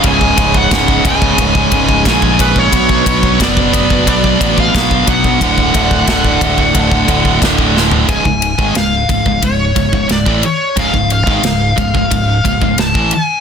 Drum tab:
RD |x-x-x-x-x-x-x-x-|x-x-x-x-x-x-x-x-|x-x-x-x-x-x-x---|x-x-x-x-x-x-x-x-|
SD |----o-------o---|----o-------o---|----o-------o-o-|----o-------o---|
FT |----------------|----------------|---------------o|----------------|
BD |oooooooooooooooo|oooooooooooooooo|oooooooooooooo--|oo-o--ooo-oo-o--|

RD |x-x-x-x-x-x-x-x-|
SD |----o-------o---|
FT |----------------|
BD |oo-o--ooo-oo-o--|